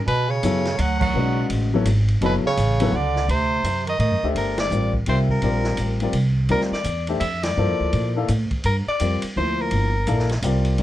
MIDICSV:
0, 0, Header, 1, 7, 480
1, 0, Start_track
1, 0, Tempo, 356930
1, 108, Time_signature, 3, 2, 24, 8
1, 14559, End_track
2, 0, Start_track
2, 0, Title_t, "Soprano saxophone"
2, 0, Program_c, 0, 64
2, 100, Note_on_c, 0, 71, 94
2, 409, Note_on_c, 0, 73, 79
2, 429, Note_off_c, 0, 71, 0
2, 1081, Note_on_c, 0, 78, 92
2, 1101, Note_off_c, 0, 73, 0
2, 1363, Note_off_c, 0, 78, 0
2, 1371, Note_on_c, 0, 78, 94
2, 1978, Note_off_c, 0, 78, 0
2, 3030, Note_on_c, 0, 71, 74
2, 3155, Note_off_c, 0, 71, 0
2, 3319, Note_on_c, 0, 73, 80
2, 3977, Note_on_c, 0, 74, 97
2, 3997, Note_off_c, 0, 73, 0
2, 4433, Note_off_c, 0, 74, 0
2, 4441, Note_on_c, 0, 72, 102
2, 5157, Note_off_c, 0, 72, 0
2, 5230, Note_on_c, 0, 75, 88
2, 5372, Note_off_c, 0, 75, 0
2, 5380, Note_on_c, 0, 75, 87
2, 5742, Note_off_c, 0, 75, 0
2, 5879, Note_on_c, 0, 70, 81
2, 6150, Note_off_c, 0, 70, 0
2, 6186, Note_on_c, 0, 74, 80
2, 6620, Note_off_c, 0, 74, 0
2, 6839, Note_on_c, 0, 72, 72
2, 6971, Note_off_c, 0, 72, 0
2, 7139, Note_on_c, 0, 70, 75
2, 8037, Note_off_c, 0, 70, 0
2, 8755, Note_on_c, 0, 70, 88
2, 8887, Note_off_c, 0, 70, 0
2, 9051, Note_on_c, 0, 74, 80
2, 9494, Note_off_c, 0, 74, 0
2, 9679, Note_on_c, 0, 76, 94
2, 9997, Note_on_c, 0, 74, 92
2, 10017, Note_off_c, 0, 76, 0
2, 10962, Note_off_c, 0, 74, 0
2, 11638, Note_on_c, 0, 70, 84
2, 11771, Note_off_c, 0, 70, 0
2, 11942, Note_on_c, 0, 74, 96
2, 12382, Note_off_c, 0, 74, 0
2, 12603, Note_on_c, 0, 72, 86
2, 12925, Note_on_c, 0, 70, 85
2, 12945, Note_off_c, 0, 72, 0
2, 13868, Note_off_c, 0, 70, 0
2, 14559, End_track
3, 0, Start_track
3, 0, Title_t, "Grand piano"
3, 0, Program_c, 1, 0
3, 588, Note_on_c, 1, 59, 61
3, 595, Note_on_c, 1, 54, 61
3, 595, Note_on_c, 1, 64, 60
3, 604, Note_on_c, 1, 69, 60
3, 606, Note_on_c, 1, 73, 66
3, 858, Note_off_c, 1, 59, 0
3, 861, Note_off_c, 1, 54, 0
3, 862, Note_off_c, 1, 64, 0
3, 866, Note_off_c, 1, 69, 0
3, 867, Note_off_c, 1, 73, 0
3, 1552, Note_on_c, 1, 56, 55
3, 1557, Note_on_c, 1, 66, 53
3, 1560, Note_on_c, 1, 49, 48
3, 1561, Note_on_c, 1, 71, 56
3, 1569, Note_on_c, 1, 74, 57
3, 2267, Note_off_c, 1, 56, 0
3, 2270, Note_off_c, 1, 66, 0
3, 2271, Note_off_c, 1, 49, 0
3, 2272, Note_off_c, 1, 71, 0
3, 2276, Note_off_c, 1, 74, 0
3, 2337, Note_on_c, 1, 54, 78
3, 2347, Note_on_c, 1, 59, 75
3, 2349, Note_on_c, 1, 64, 66
3, 2354, Note_on_c, 1, 69, 67
3, 2360, Note_on_c, 1, 73, 80
3, 2489, Note_off_c, 1, 54, 0
3, 2494, Note_off_c, 1, 59, 0
3, 2495, Note_off_c, 1, 64, 0
3, 2498, Note_off_c, 1, 69, 0
3, 2501, Note_off_c, 1, 73, 0
3, 2988, Note_on_c, 1, 54, 73
3, 2993, Note_on_c, 1, 59, 68
3, 3004, Note_on_c, 1, 64, 59
3, 3008, Note_on_c, 1, 69, 55
3, 3010, Note_on_c, 1, 73, 74
3, 3255, Note_off_c, 1, 54, 0
3, 3258, Note_off_c, 1, 59, 0
3, 3263, Note_off_c, 1, 64, 0
3, 3265, Note_off_c, 1, 69, 0
3, 3266, Note_off_c, 1, 73, 0
3, 3772, Note_on_c, 1, 54, 67
3, 3778, Note_on_c, 1, 59, 65
3, 3786, Note_on_c, 1, 64, 65
3, 3787, Note_on_c, 1, 69, 71
3, 3790, Note_on_c, 1, 71, 84
3, 3925, Note_off_c, 1, 54, 0
3, 3929, Note_off_c, 1, 59, 0
3, 3932, Note_off_c, 1, 64, 0
3, 3933, Note_off_c, 1, 69, 0
3, 3934, Note_off_c, 1, 71, 0
3, 5699, Note_on_c, 1, 67, 59
3, 5701, Note_on_c, 1, 57, 69
3, 5701, Note_on_c, 1, 62, 59
3, 5709, Note_on_c, 1, 76, 80
3, 5710, Note_on_c, 1, 72, 59
3, 6311, Note_off_c, 1, 67, 0
3, 6312, Note_off_c, 1, 57, 0
3, 6312, Note_off_c, 1, 62, 0
3, 6316, Note_off_c, 1, 76, 0
3, 6317, Note_off_c, 1, 72, 0
3, 6352, Note_on_c, 1, 55, 57
3, 6355, Note_on_c, 1, 60, 50
3, 6360, Note_on_c, 1, 65, 48
3, 6362, Note_on_c, 1, 70, 52
3, 6363, Note_on_c, 1, 74, 57
3, 6616, Note_off_c, 1, 55, 0
3, 6618, Note_off_c, 1, 60, 0
3, 6620, Note_off_c, 1, 65, 0
3, 6621, Note_off_c, 1, 70, 0
3, 6622, Note_off_c, 1, 74, 0
3, 6822, Note_on_c, 1, 55, 58
3, 6831, Note_on_c, 1, 65, 48
3, 6833, Note_on_c, 1, 60, 54
3, 6836, Note_on_c, 1, 70, 58
3, 6841, Note_on_c, 1, 76, 67
3, 7285, Note_off_c, 1, 55, 0
3, 7286, Note_off_c, 1, 60, 0
3, 7292, Note_off_c, 1, 65, 0
3, 7297, Note_off_c, 1, 70, 0
3, 7305, Note_on_c, 1, 55, 71
3, 7307, Note_on_c, 1, 60, 65
3, 7312, Note_on_c, 1, 65, 62
3, 7317, Note_on_c, 1, 70, 65
3, 7319, Note_on_c, 1, 74, 70
3, 7552, Note_off_c, 1, 76, 0
3, 8024, Note_off_c, 1, 55, 0
3, 8025, Note_off_c, 1, 60, 0
3, 8028, Note_off_c, 1, 65, 0
3, 8030, Note_off_c, 1, 70, 0
3, 8031, Note_off_c, 1, 74, 0
3, 8090, Note_on_c, 1, 55, 65
3, 8094, Note_on_c, 1, 65, 62
3, 8099, Note_on_c, 1, 60, 63
3, 8108, Note_on_c, 1, 70, 62
3, 8112, Note_on_c, 1, 74, 73
3, 8246, Note_off_c, 1, 55, 0
3, 8247, Note_off_c, 1, 65, 0
3, 8250, Note_off_c, 1, 60, 0
3, 8254, Note_off_c, 1, 70, 0
3, 8256, Note_off_c, 1, 74, 0
3, 8728, Note_on_c, 1, 55, 65
3, 8733, Note_on_c, 1, 60, 60
3, 8743, Note_on_c, 1, 65, 62
3, 8748, Note_on_c, 1, 70, 69
3, 8752, Note_on_c, 1, 74, 76
3, 9007, Note_off_c, 1, 55, 0
3, 9009, Note_off_c, 1, 60, 0
3, 9014, Note_off_c, 1, 65, 0
3, 9016, Note_off_c, 1, 70, 0
3, 9018, Note_off_c, 1, 74, 0
3, 9527, Note_on_c, 1, 57, 68
3, 9537, Note_on_c, 1, 62, 63
3, 9538, Note_on_c, 1, 67, 65
3, 9540, Note_on_c, 1, 72, 61
3, 9542, Note_on_c, 1, 76, 76
3, 9685, Note_off_c, 1, 57, 0
3, 9690, Note_off_c, 1, 62, 0
3, 9691, Note_off_c, 1, 67, 0
3, 9692, Note_off_c, 1, 72, 0
3, 9693, Note_off_c, 1, 76, 0
3, 10183, Note_on_c, 1, 53, 63
3, 10187, Note_on_c, 1, 64, 59
3, 10191, Note_on_c, 1, 58, 58
3, 10198, Note_on_c, 1, 69, 63
3, 10207, Note_on_c, 1, 72, 75
3, 10906, Note_off_c, 1, 53, 0
3, 10908, Note_off_c, 1, 64, 0
3, 10910, Note_off_c, 1, 58, 0
3, 10913, Note_off_c, 1, 69, 0
3, 10917, Note_off_c, 1, 72, 0
3, 10971, Note_on_c, 1, 58, 64
3, 10982, Note_on_c, 1, 69, 69
3, 10985, Note_on_c, 1, 74, 66
3, 10986, Note_on_c, 1, 64, 66
3, 10996, Note_on_c, 1, 77, 74
3, 11128, Note_off_c, 1, 58, 0
3, 11134, Note_off_c, 1, 69, 0
3, 11136, Note_off_c, 1, 64, 0
3, 11136, Note_off_c, 1, 74, 0
3, 11141, Note_off_c, 1, 77, 0
3, 12108, Note_on_c, 1, 55, 61
3, 12113, Note_on_c, 1, 60, 50
3, 12116, Note_on_c, 1, 65, 50
3, 12119, Note_on_c, 1, 70, 45
3, 12125, Note_on_c, 1, 74, 66
3, 12379, Note_off_c, 1, 55, 0
3, 12382, Note_off_c, 1, 60, 0
3, 12383, Note_off_c, 1, 65, 0
3, 12384, Note_off_c, 1, 70, 0
3, 12388, Note_off_c, 1, 74, 0
3, 12593, Note_on_c, 1, 53, 57
3, 12602, Note_on_c, 1, 58, 56
3, 12602, Note_on_c, 1, 64, 53
3, 12602, Note_on_c, 1, 70, 54
3, 12611, Note_on_c, 1, 72, 66
3, 13312, Note_off_c, 1, 53, 0
3, 13317, Note_off_c, 1, 58, 0
3, 13317, Note_off_c, 1, 64, 0
3, 13317, Note_off_c, 1, 70, 0
3, 13321, Note_off_c, 1, 72, 0
3, 13545, Note_on_c, 1, 58, 69
3, 13551, Note_on_c, 1, 64, 67
3, 13552, Note_on_c, 1, 69, 68
3, 13558, Note_on_c, 1, 77, 78
3, 13561, Note_on_c, 1, 74, 64
3, 13818, Note_off_c, 1, 58, 0
3, 13821, Note_off_c, 1, 64, 0
3, 13822, Note_off_c, 1, 69, 0
3, 13825, Note_off_c, 1, 77, 0
3, 13826, Note_off_c, 1, 74, 0
3, 14036, Note_on_c, 1, 55, 63
3, 14040, Note_on_c, 1, 60, 57
3, 14041, Note_on_c, 1, 65, 60
3, 14048, Note_on_c, 1, 70, 64
3, 14052, Note_on_c, 1, 74, 74
3, 14483, Note_off_c, 1, 55, 0
3, 14487, Note_off_c, 1, 65, 0
3, 14489, Note_off_c, 1, 60, 0
3, 14494, Note_off_c, 1, 70, 0
3, 14497, Note_off_c, 1, 74, 0
3, 14503, Note_on_c, 1, 55, 62
3, 14507, Note_on_c, 1, 65, 60
3, 14509, Note_on_c, 1, 60, 60
3, 14515, Note_on_c, 1, 70, 56
3, 14517, Note_on_c, 1, 74, 68
3, 14559, Note_off_c, 1, 55, 0
3, 14559, Note_off_c, 1, 60, 0
3, 14559, Note_off_c, 1, 65, 0
3, 14559, Note_off_c, 1, 70, 0
3, 14559, Note_off_c, 1, 74, 0
3, 14559, End_track
4, 0, Start_track
4, 0, Title_t, "Bass clarinet"
4, 0, Program_c, 2, 71
4, 79, Note_on_c, 2, 47, 71
4, 380, Note_on_c, 2, 49, 77
4, 400, Note_off_c, 2, 47, 0
4, 1037, Note_on_c, 2, 54, 87
4, 1057, Note_off_c, 2, 49, 0
4, 1329, Note_off_c, 2, 54, 0
4, 1337, Note_on_c, 2, 54, 84
4, 1960, Note_off_c, 2, 54, 0
4, 2993, Note_on_c, 2, 47, 74
4, 3126, Note_off_c, 2, 47, 0
4, 3308, Note_on_c, 2, 49, 87
4, 3946, Note_on_c, 2, 50, 87
4, 3966, Note_off_c, 2, 49, 0
4, 4418, Note_off_c, 2, 50, 0
4, 4426, Note_on_c, 2, 48, 70
4, 5149, Note_off_c, 2, 48, 0
4, 5198, Note_on_c, 2, 51, 76
4, 5347, Note_off_c, 2, 51, 0
4, 5355, Note_on_c, 2, 51, 73
4, 5728, Note_off_c, 2, 51, 0
4, 14559, End_track
5, 0, Start_track
5, 0, Title_t, "Upright bass"
5, 0, Program_c, 3, 32
5, 96, Note_on_c, 3, 47, 72
5, 565, Note_off_c, 3, 47, 0
5, 579, Note_on_c, 3, 42, 91
5, 1047, Note_off_c, 3, 42, 0
5, 1057, Note_on_c, 3, 38, 83
5, 1525, Note_off_c, 3, 38, 0
5, 1540, Note_on_c, 3, 35, 81
5, 2005, Note_off_c, 3, 35, 0
5, 2015, Note_on_c, 3, 33, 89
5, 2482, Note_off_c, 3, 33, 0
5, 2493, Note_on_c, 3, 32, 93
5, 2961, Note_off_c, 3, 32, 0
5, 2972, Note_on_c, 3, 30, 84
5, 3256, Note_off_c, 3, 30, 0
5, 3461, Note_on_c, 3, 33, 84
5, 3924, Note_off_c, 3, 33, 0
5, 3932, Note_on_c, 3, 37, 88
5, 4399, Note_off_c, 3, 37, 0
5, 4416, Note_on_c, 3, 38, 91
5, 4881, Note_off_c, 3, 38, 0
5, 4889, Note_on_c, 3, 42, 80
5, 5358, Note_off_c, 3, 42, 0
5, 5366, Note_on_c, 3, 45, 82
5, 5528, Note_off_c, 3, 45, 0
5, 5528, Note_on_c, 3, 42, 51
5, 5681, Note_off_c, 3, 42, 0
5, 5689, Note_on_c, 3, 38, 60
5, 5841, Note_off_c, 3, 38, 0
5, 5849, Note_on_c, 3, 31, 73
5, 6318, Note_off_c, 3, 31, 0
5, 6331, Note_on_c, 3, 33, 79
5, 6799, Note_off_c, 3, 33, 0
5, 6816, Note_on_c, 3, 36, 90
5, 7282, Note_off_c, 3, 36, 0
5, 7294, Note_on_c, 3, 34, 76
5, 7762, Note_off_c, 3, 34, 0
5, 7771, Note_on_c, 3, 33, 80
5, 8233, Note_off_c, 3, 33, 0
5, 8241, Note_on_c, 3, 36, 83
5, 8716, Note_off_c, 3, 36, 0
5, 8730, Note_on_c, 3, 38, 78
5, 9016, Note_off_c, 3, 38, 0
5, 9200, Note_on_c, 3, 40, 88
5, 9677, Note_off_c, 3, 40, 0
5, 9688, Note_on_c, 3, 41, 94
5, 10161, Note_off_c, 3, 41, 0
5, 10182, Note_on_c, 3, 43, 76
5, 10340, Note_off_c, 3, 43, 0
5, 10340, Note_on_c, 3, 41, 55
5, 10485, Note_off_c, 3, 41, 0
5, 10493, Note_on_c, 3, 38, 61
5, 10647, Note_off_c, 3, 38, 0
5, 10667, Note_on_c, 3, 46, 83
5, 11131, Note_off_c, 3, 46, 0
5, 11147, Note_on_c, 3, 45, 87
5, 11427, Note_off_c, 3, 45, 0
5, 11622, Note_on_c, 3, 43, 84
5, 11905, Note_off_c, 3, 43, 0
5, 12109, Note_on_c, 3, 41, 72
5, 12389, Note_off_c, 3, 41, 0
5, 12591, Note_on_c, 3, 38, 87
5, 13055, Note_off_c, 3, 38, 0
5, 13063, Note_on_c, 3, 31, 86
5, 13531, Note_off_c, 3, 31, 0
5, 13547, Note_on_c, 3, 34, 93
5, 14009, Note_off_c, 3, 34, 0
5, 14017, Note_on_c, 3, 36, 80
5, 14488, Note_off_c, 3, 36, 0
5, 14507, Note_on_c, 3, 38, 80
5, 14559, Note_off_c, 3, 38, 0
5, 14559, End_track
6, 0, Start_track
6, 0, Title_t, "Muted upright bass strokes"
6, 3283, Note_on_c, 9, 29, 43
6, 3418, Note_off_c, 9, 29, 0
6, 9027, Note_on_c, 9, 29, 40
6, 9161, Note_off_c, 9, 29, 0
6, 11441, Note_on_c, 9, 29, 36
6, 11576, Note_off_c, 9, 29, 0
6, 11929, Note_on_c, 9, 29, 34
6, 12063, Note_off_c, 9, 29, 0
6, 12416, Note_on_c, 9, 29, 37
6, 12550, Note_off_c, 9, 29, 0
6, 14559, End_track
7, 0, Start_track
7, 0, Title_t, "Drums"
7, 101, Note_on_c, 9, 51, 62
7, 235, Note_off_c, 9, 51, 0
7, 576, Note_on_c, 9, 44, 64
7, 576, Note_on_c, 9, 51, 69
7, 711, Note_off_c, 9, 44, 0
7, 711, Note_off_c, 9, 51, 0
7, 878, Note_on_c, 9, 51, 38
7, 881, Note_on_c, 9, 38, 37
7, 1012, Note_off_c, 9, 51, 0
7, 1015, Note_off_c, 9, 38, 0
7, 1055, Note_on_c, 9, 51, 66
7, 1190, Note_off_c, 9, 51, 0
7, 1356, Note_on_c, 9, 49, 71
7, 1360, Note_on_c, 9, 36, 74
7, 1490, Note_off_c, 9, 49, 0
7, 1494, Note_off_c, 9, 36, 0
7, 2013, Note_on_c, 9, 51, 65
7, 2147, Note_off_c, 9, 51, 0
7, 2493, Note_on_c, 9, 44, 60
7, 2493, Note_on_c, 9, 51, 72
7, 2628, Note_off_c, 9, 44, 0
7, 2628, Note_off_c, 9, 51, 0
7, 2801, Note_on_c, 9, 51, 41
7, 2935, Note_off_c, 9, 51, 0
7, 2979, Note_on_c, 9, 51, 60
7, 3113, Note_off_c, 9, 51, 0
7, 3460, Note_on_c, 9, 44, 47
7, 3460, Note_on_c, 9, 51, 60
7, 3595, Note_off_c, 9, 44, 0
7, 3595, Note_off_c, 9, 51, 0
7, 3763, Note_on_c, 9, 51, 66
7, 3897, Note_off_c, 9, 51, 0
7, 4249, Note_on_c, 9, 38, 30
7, 4383, Note_off_c, 9, 38, 0
7, 4427, Note_on_c, 9, 51, 59
7, 4561, Note_off_c, 9, 51, 0
7, 4900, Note_on_c, 9, 44, 55
7, 4900, Note_on_c, 9, 51, 65
7, 5034, Note_off_c, 9, 44, 0
7, 5034, Note_off_c, 9, 51, 0
7, 5205, Note_on_c, 9, 51, 43
7, 5340, Note_off_c, 9, 51, 0
7, 5374, Note_on_c, 9, 51, 57
7, 5508, Note_off_c, 9, 51, 0
7, 5858, Note_on_c, 9, 51, 60
7, 5992, Note_off_c, 9, 51, 0
7, 6155, Note_on_c, 9, 51, 55
7, 6158, Note_on_c, 9, 38, 73
7, 6289, Note_off_c, 9, 51, 0
7, 6292, Note_off_c, 9, 38, 0
7, 6335, Note_on_c, 9, 44, 58
7, 6469, Note_off_c, 9, 44, 0
7, 6634, Note_on_c, 9, 36, 53
7, 6768, Note_off_c, 9, 36, 0
7, 6806, Note_on_c, 9, 51, 60
7, 6940, Note_off_c, 9, 51, 0
7, 7110, Note_on_c, 9, 36, 37
7, 7245, Note_off_c, 9, 36, 0
7, 7285, Note_on_c, 9, 51, 58
7, 7419, Note_off_c, 9, 51, 0
7, 7584, Note_on_c, 9, 38, 37
7, 7718, Note_off_c, 9, 38, 0
7, 7759, Note_on_c, 9, 44, 46
7, 7759, Note_on_c, 9, 51, 61
7, 7893, Note_off_c, 9, 44, 0
7, 7893, Note_off_c, 9, 51, 0
7, 8068, Note_on_c, 9, 51, 44
7, 8203, Note_off_c, 9, 51, 0
7, 8242, Note_on_c, 9, 51, 67
7, 8376, Note_off_c, 9, 51, 0
7, 8723, Note_on_c, 9, 51, 60
7, 8857, Note_off_c, 9, 51, 0
7, 8888, Note_on_c, 9, 38, 29
7, 9022, Note_off_c, 9, 38, 0
7, 9051, Note_on_c, 9, 38, 40
7, 9186, Note_off_c, 9, 38, 0
7, 9202, Note_on_c, 9, 44, 43
7, 9202, Note_on_c, 9, 51, 56
7, 9337, Note_off_c, 9, 44, 0
7, 9337, Note_off_c, 9, 51, 0
7, 9507, Note_on_c, 9, 51, 42
7, 9642, Note_off_c, 9, 51, 0
7, 9688, Note_on_c, 9, 51, 67
7, 9823, Note_off_c, 9, 51, 0
7, 9994, Note_on_c, 9, 51, 62
7, 9997, Note_on_c, 9, 38, 73
7, 10129, Note_off_c, 9, 51, 0
7, 10131, Note_off_c, 9, 38, 0
7, 10659, Note_on_c, 9, 51, 57
7, 10794, Note_off_c, 9, 51, 0
7, 11139, Note_on_c, 9, 44, 52
7, 11139, Note_on_c, 9, 51, 68
7, 11273, Note_off_c, 9, 44, 0
7, 11273, Note_off_c, 9, 51, 0
7, 11440, Note_on_c, 9, 51, 43
7, 11445, Note_on_c, 9, 36, 55
7, 11575, Note_off_c, 9, 51, 0
7, 11579, Note_off_c, 9, 36, 0
7, 11613, Note_on_c, 9, 51, 59
7, 11748, Note_off_c, 9, 51, 0
7, 12097, Note_on_c, 9, 44, 53
7, 12097, Note_on_c, 9, 51, 69
7, 12231, Note_off_c, 9, 44, 0
7, 12231, Note_off_c, 9, 51, 0
7, 12397, Note_on_c, 9, 51, 67
7, 12531, Note_off_c, 9, 51, 0
7, 13055, Note_on_c, 9, 51, 59
7, 13190, Note_off_c, 9, 51, 0
7, 13538, Note_on_c, 9, 44, 56
7, 13538, Note_on_c, 9, 51, 58
7, 13672, Note_off_c, 9, 44, 0
7, 13672, Note_off_c, 9, 51, 0
7, 13705, Note_on_c, 9, 38, 29
7, 13839, Note_off_c, 9, 38, 0
7, 13842, Note_on_c, 9, 51, 46
7, 13863, Note_on_c, 9, 38, 41
7, 13976, Note_off_c, 9, 51, 0
7, 13998, Note_off_c, 9, 38, 0
7, 14018, Note_on_c, 9, 44, 63
7, 14018, Note_on_c, 9, 51, 68
7, 14153, Note_off_c, 9, 44, 0
7, 14153, Note_off_c, 9, 51, 0
7, 14317, Note_on_c, 9, 51, 47
7, 14452, Note_off_c, 9, 51, 0
7, 14497, Note_on_c, 9, 51, 49
7, 14559, Note_off_c, 9, 51, 0
7, 14559, End_track
0, 0, End_of_file